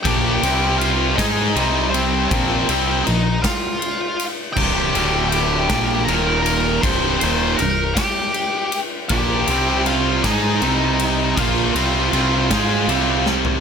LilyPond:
<<
  \new Staff \with { instrumentName = "Lead electric guitar" } { \time 6/8 \key c \minor \tempo 4. = 53 <g' g''>4 <f' f''>8 <ees' ees''>4 <c' c''>8 | <c' c''>4 <ees' ees''>8 <f' f''>4 r8 | <g' g''>4 <g' g''>4 <bes' bes''>8 <bes' bes''>8 | <c'' c'''>8 <c'' c'''>8 <bes' bes''>8 <g' g''>4 r8 |
<g' g''>4 <f' f''>8 <ees' ees''>4. | <f' f''>2~ <f' f''>8 r8 | }
  \new Staff \with { instrumentName = "Distorted electric guitar" } { \clef bass \time 6/8 \key c \minor <bes, f bes>8 <c g c'>4 <aes ees' aes'>8 <c g c'>4 | <bes, f bes>8 <c g c'>8 <bes, f>8 r4. | <c, g, c>8 <d, a, d>4 <bes, f bes>8 <ees, bes, ees>4 | <c, g, c>8 <ees, bes, ees>8 <c, g,>8 r4. |
<bes, f bes>8 <c g c'>4 <aes ees' aes'>8 <c g c'>4 | <bes, f bes>8 <c g c'>8 <c g c'>8 <aes ees' aes'>8 <c g c'>4 | }
  \new Staff \with { instrumentName = "Distorted electric guitar" } { \clef bass \time 6/8 \key c \minor <bes, f bes>8 <c g c'>4 <aes ees' aes'>8 <c g c'>4 | <bes, f bes>8 <c g c'>8 <bes, f>8 r4. | <c, g, c>8 <d, a, d>4 <bes, f bes>8 <ees, bes, ees>4 | <c, g, c>8 <ees, bes, ees>8 <c, g,>8 r4. |
<bes, f bes>8 <c g c'>4 <aes ees' aes'>8 <c g c'>4 | <bes, f bes>8 <c g c'>8 <c g c'>8 <aes ees' aes'>8 <c g c'>4 | }
  \new Staff \with { instrumentName = "Fingered electric bass" } { \clef bass \time 6/8 \key c \minor bes,,8 c,4 aes,8 c,4 | bes,,8 c,8 bes,,8 r4. | c,,8 d,,4 bes,,8 ees,,4 | c,,8 ees,,8 c,,8 r4. |
bes,,8 c,4 aes,8 c,4 | bes,,8 c,8 c,8 aes,8 c,4 | }
  \new DrumStaff \with { instrumentName = "Drums" } \drummode { \time 6/8 <bd cymr>8 cymr8 cymr8 <bd cymr sn>8 cymr8 cymr8 | <bd cymr>8 cymr8 cymr8 <bd cymr sn>8 cymr8 cymr8 | <cymc bd>8 cymr8 cymr8 <bd cymr sn>8 cymr8 cymr8 | <bd cymr>8 cymr8 cymr8 <bd cymr sn>8 cymr8 cymr8 |
<bd cymr>8 cymr8 cymr8 <bd cymr sn>8 cymr8 cymr8 | <bd cymr>8 cymr8 cymr8 <bd cymr sn>8 cymr8 sn16 tomfh16 | }
>>